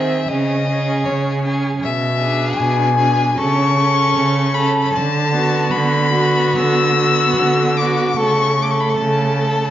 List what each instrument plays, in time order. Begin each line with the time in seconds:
Already playing: cello D#3, viola C4, violin G#4 E5
0.28 cello C#3, viola C#4, violin G#4 D#5
0.67 viola C#4, violin G#4
1.05 cello C#3, violin C#5
1.44 viola C#4, violin G#4
1.82 cello B2, violin E5
2.18 viola D4, violin G#4
2.56 cello B2, violin G#5
2.95 viola D4, violin G#4
3.38 cello C#3, viola C#4, violin A4 C#6
3.77 viola C#4, violin A4
4.17 cello C#3
4.54 viola C#4, violin A4 B5
4.93 cello D3, violin A5
5.32 viola B3, violin F#4
5.71 cello D3, violin B5
6.13 viola B3, violin F#4
6.56 cello D3, violin E6
6.96 viola B3, violin F#4
7.35 cello D3
7.77 viola B3, violin F#4 D6
8.17 cello C#3, viola A3, violin A4 C#6
8.58 viola A3, violin A4
8.62 violin D6
8.71 violin C#6
8.80 violin B5
8.90 violin C#6
8.97 cello C#3, violin A5
9.38 viola A3, violin A4